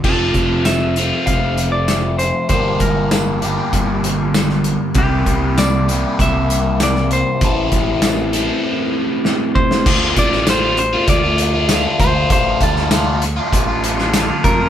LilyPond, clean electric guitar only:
\new Staff \with { instrumentName = "Clean electric guitar" } { \time 4/4 \key d \minor \tempo 4 = 98 a'4 e''4 f''8. d''8. c''8 | c''8 bes'2. r8 | g'4 d''4 e''4 d''8 c''8~ | c''2. r8 c''8~ |
c''8 d''8 c''8 c''8 d''4 r8 c''8 | c''8 a'4 r2 bes'8 | }